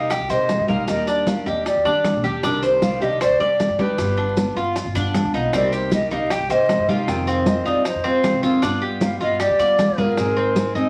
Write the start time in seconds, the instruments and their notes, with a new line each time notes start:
Already playing: upright bass C2, flute F5
0.10 cuban tres G4, flute G5, muted steel-string acoustic guitar stroke, high bongo, high conga, maracas
0.20 upright bass C2
0.29 upright bass C3, steel-string acoustic guitar A#3 D#4 G4, cuban tres C5, flute D#5, high conga, maracas
0.49 high bongo, low bongo, high conga, maracas
0.59 upright bass G2
0.67 upright bass C2, steel-string acoustic guitar G3 A#3 D#4 G4, cuban tres A#4, flute F5, high conga, maracas
0.87 upright bass D#2, steel-string acoustic guitar D#3 G3 D4 G4, flute D#5, high bongo, high conga, maracas
1.07 cuban tres D4, flute D5, high bongo, high conga, maracas
1.26 steel-string acoustic guitar D#3 G3 D4 G4, flute F5, high bongo, high conga, maracas
1.46 upright bass D#2, steel-string acoustic guitar G3 D4 G4, cuban tres G4, flute D#5, high bongo, high conga, maracas
1.65 flute D5, muted steel-string acoustic guitar stroke, high bongo, high conga, maracas
1.76 upright bass D#2
1.85 upright bass D#3, steel-string acoustic guitar G3 D4 G4, cuban tres D4, high bongo, high conga
2.04 high bongo, low bongo, high conga, maracas
2.14 upright bass A#1
2.23 upright bass D#2, steel-string acoustic guitar G3 D4 G4, cuban tres G4, maracas
2.43 upright bass C2, steel-string acoustic guitar C3 D#3 G3 D4 G4, cuban tres D4, high bongo, high conga, maracas
2.62 cuban tres C5, high conga, maracas
2.82 steel-string acoustic guitar D#3 G3 D4 G4, flute F5, high bongo, high conga, maracas
3.01 upright bass C2, steel-string acoustic guitar D#3 G3 D4 G4, cuban tres G4, flute D#5, high conga, maracas
3.20 cuban tres C5, flute D5, muted steel-string acoustic guitar stroke, high bongo, high conga, maracas
3.30 upright bass C2
3.39 upright bass C3, steel-string acoustic guitar G3 D4 G4, cuban tres D5, high conga
3.60 high bongo, low bongo, high conga, maracas
3.69 upright bass G2
3.79 upright bass D2, steel-string acoustic guitar D#3 G3 D4 G4, cuban tres G4, flute B4, high conga, maracas
3.98 upright bass G1, steel-string acoustic guitar G3 B3 F4, high bongo, maracas
4.18 cuban tres D4, high bongo, high conga
4.37 steel-string acoustic guitar G3 B3 F4, high bongo, high conga, maracas
4.56 upright bass G1, steel-string acoustic guitar B3 F4, cuban tres F4, high bongo, high conga, maracas
4.76 muted steel-string acoustic guitar stroke, high bongo, high conga, maracas
4.85 upright bass G1
4.95 upright bass G2, steel-string acoustic guitar B3 F4, cuban tres D4, high bongo, high conga, maracas
5.14 high bongo, low bongo, high conga, maracas
5.24 upright bass D2
5.34 upright bass B1, steel-string acoustic guitar B3 F4, cuban tres D#4, maracas
5.53 upright bass C2, steel-string acoustic guitar C3 G3 A#3 D#4 G4, cuban tres C4, flute D5, high bongo, high conga, maracas
5.72 cuban tres G4, flute C5, high conga, maracas
5.92 steel-string acoustic guitar G3 A#3 D#4 G4, flute D#5, high bongo, high conga, maracas
6.11 upright bass C2, steel-string acoustic guitar G3 A#3 D#4 G4, cuban tres D#4, flute F5, high conga, maracas
6.30 cuban tres G4, flute G5, muted steel-string acoustic guitar stroke, high bongo, high conga, maracas
6.40 upright bass C2
6.49 upright bass C3, steel-string acoustic guitar A#3 D#4 G4, cuban tres C5, flute D#5, high conga, maracas
6.69 high bongo, low bongo, high conga, maracas
6.79 upright bass G2
6.88 upright bass C2, steel-string acoustic guitar G3 A#3 D#4 G4, cuban tres F4, flute F5, high conga, maracas
7.07 upright bass F2, steel-string acoustic guitar C3 D#3 G#3 C4 F4, flute G5, high bongo, high conga, maracas
7.27 cuban tres C4, flute F5, high bongo, high conga, maracas
7.46 steel-string acoustic guitar D#3 G#3 C4 F4, flute D#5, high bongo, high conga, maracas
7.65 upright bass F2, steel-string acoustic guitar D#3 G#3 C4 F4, cuban tres D#4, flute D5, high bongo, high conga, maracas
7.85 flute C5, muted steel-string acoustic guitar stroke, high bongo, high conga, maracas
7.95 upright bass F2
8.04 upright bass F3, steel-string acoustic guitar G#3 C4 F4, cuban tres C4, high bongo, high conga
8.24 high bongo, low bongo, high conga, maracas
8.34 upright bass C2
8.43 upright bass F2, steel-string acoustic guitar D#3 G#3 C4 F4, cuban tres F4, maracas
8.62 upright bass G2, steel-string acoustic guitar G3 B3 F4, cuban tres D4, high bongo, high conga, maracas
8.82 cuban tres G4, high conga
9.01 steel-string acoustic guitar G3 B3 F4, flute F5, high bongo, high conga, maracas
9.20 upright bass G2, steel-string acoustic guitar B3 F4, cuban tres F4, flute D#5, high conga, maracas
9.40 cuban tres G4, flute D5, muted steel-string acoustic guitar stroke, high bongo, high conga, maracas
9.50 upright bass G2
9.59 upright bass G3, steel-string acoustic guitar B3 F4, cuban tres D5, high conga, maracas
9.79 high bongo, low bongo, high conga, maracas
9.88 upright bass D2
9.98 upright bass G2, steel-string acoustic guitar B3 F4, cuban tres G#4, flute A#4, high conga, maracas
10.17 upright bass G#2, steel-string acoustic guitar D#3 G#3 C4 D#4 G#4, high bongo, high conga, maracas
10.36 cuban tres C4, high bongo, high conga
10.56 steel-string acoustic guitar G#3 C4 D#4 G#4, high bongo, high conga, maracas
10.75 upright bass G#2, steel-string acoustic guitar G#3 C4 D#4 G#4, cuban tres D#4, high bongo, high conga, maracas